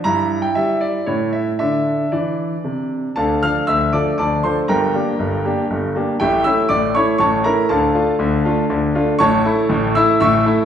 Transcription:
<<
  \new Staff \with { instrumentName = "Grand piano" } { \time 3/4 \key d \minor \tempo 4 = 119 << { bes''8. g''16 e''8 d''8 cis''8 e''8 | e''4 d''4. r8 | <a' f'' a''>8 <f'' f'''>8 <e'' e'''>8 <d'' d'''>8 <d'' a'' d'''>8 <c'' c'''>8 | <bes' g'' bes''>2~ <bes' g'' bes''>8 r8 |
<g' e'' g''>8 <e'' e'''>8 <d'' d'''>8 <cis'' cis'''>8 <cis'' a'' cis'''>8 <bes' bes''>8 | <a' f'' a''>2~ <a' f'' a''>8 r8 | <cis'' a'' cis'''>4. <e'' e'''>8 <e'' cis''' e'''>4 | } \\ { e'2 e'4 | d'2. | r2. | r2. |
r2. | r2. | r2. | } >> }
  \new Staff \with { instrumentName = "Grand piano" } { \clef bass \time 3/4 \key d \minor g,4 g4 a,4 | d4 e4 c4 | <d, d>8 <f d' a'>8 <d, d>8 <f d' a'>8 <d, d>8 <f d' a'>8 | <g,, g,>8 <bes d' g'>8 <g,, g,>8 <bes d' g'>8 <g,, g,>8 <bes d' g'>8 |
<a,, a,>8 <a cis' e'>8 <a,, a,>8 <a cis' e'>8 <a,, a,>8 <a cis' e'>8 | <d, d>8 <a d' f'>8 <d, d>8 <a d' f'>8 <d, d>8 <a d' f'>8 | <a,, a,>8 <a e'>8 <a,, a,>8 <a e'>8 <a,, a,>8 <a e'>8 | }
>>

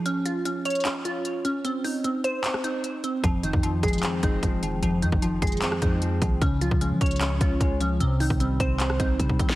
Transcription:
<<
  \new Staff \with { instrumentName = "Synth pluck" } { \time 4/4 \key f \minor \tempo 4 = 151 des'8 f'8 des'8 des''8 des'8 f'4 des'8 | c'8 ees'8 c'8 c''8 c'8 ees'4 c'8 | f8 ees'8 f8 aes'8 f8 ees'4 f8 | f8 ees'8 f8 aes'8 f8 ees'4 f8 |
des'8 f'8 des'8 des''8 des'8 f'4 des'8 | c'8 ees'8 c'8 c''8 c'8 ees'4 c'8 | }
  \new Staff \with { instrumentName = "Clean electric guitar" } { \clef bass \time 4/4 \key f \minor r1 | r1 | f,8 ees8 f8 aes8 c'8 aes8 f8 ees8 | f,8 ees8 f8 aes8 c'8 aes8 f8 ees8 |
des8 f8 aes8 des'8 des''8 des'8 aes8 f8 | c8 ees8 g8 c'8 c''8 c'8 g8 ees8 | }
  \new Staff \with { instrumentName = "808-style bass" } { \clef bass \time 4/4 \key f \minor r1 | r1 | f,,8. f,8. f,,8 r8 f,,8 f,,4 | f,,8 f,16 f,,8. f,,8 r8 f,4 c,8 |
des,8. des,8 f16 des,4 des,8 des,4 | c,8. c,8. c,4 c,8 c8 r8 | }
  \new DrumStaff \with { instrumentName = "Drums" } \drummode { \time 4/4 hh8 hh8 hh8 hh32 hh32 hh32 hh32 <hc hh>8 hh8 hh8 hh8 | hh8 hho8 hh8 hh8 <hc hh>16 ss16 hh8 hh8 hh8 | <hh bd>8 hh16 bd16 hh8 <hh bd>32 hh32 hh32 hh32 <hc hh>8 <hh bd>8 <hh bd>8 hh8 | hh8 hh16 bd16 hh8 <hh bd>32 hh32 hh32 hh32 <hc hh>16 ss16 <hh bd>8 hh8 <hh bd>8 |
<hh bd>8 hh16 bd16 hh8 <hh bd>32 hh32 hh32 hh32 <hc hh>8 <hh bd>8 <hh bd>8 hh8 | hh8 hho16 bd16 hh8 <hh bd>8 <hc hh>16 ss16 <hh bd>8 <hh bd>16 bd16 <hh bd>16 sn16 | }
>>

